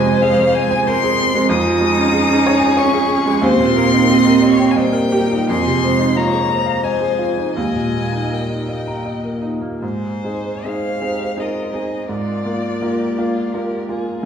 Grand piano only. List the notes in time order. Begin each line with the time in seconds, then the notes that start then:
Already playing: F2 C3 G#3
0.06 C4
0.22 G#4
0.38 C4
0.54 C5
0.71 G#5
0.87 C5
1.04 G#4
1.18 C4
1.35 G#3
1.49 F2
1.66 F3
1.81 G#3
1.98 C#4
2.13 G#4
2.30 C#4
2.46 C#5
2.60 G#5
2.77 C#5
2.93 G#4
3.10 C#4
3.26 G#3
3.42 D#2
3.59 A#2
3.76 A#3
3.93 D#4
4.10 G4
4.26 A#4
4.42 D#5
4.59 G5
4.76 D#5
4.93 A#4
5.12 G4
5.31 D#4
5.50 F2
5.66 C3
5.84 G#3
5.99 D#4
6.16 F4
6.32 G#4
6.49 D#5
6.66 F5
6.83 D#5
7.01 G#4
7.19 F4
7.38 D#4
7.57 D#2
7.75 A#2
7.94 A#3
8.13 D#4
8.31 A#4
8.49 D#4
8.69 D#5
8.88 A#5
9.06 D#5
9.24 A#4
9.42 D#4
9.61 A#3
9.82 G#2
10.24 C4 D#4 G#4
10.64 C4 D#4 G#4
11.01 C4 D#4 G#4
11.36 C4 D#4 G#4
11.73 C4 D#4 G#4
12.09 G#2
12.44 A#3 F4 A#4
12.82 A#3 F4 A#4
13.18 A#3 F4 A#4
13.54 A#3 F4 A#4
13.89 A#3 F4 A#4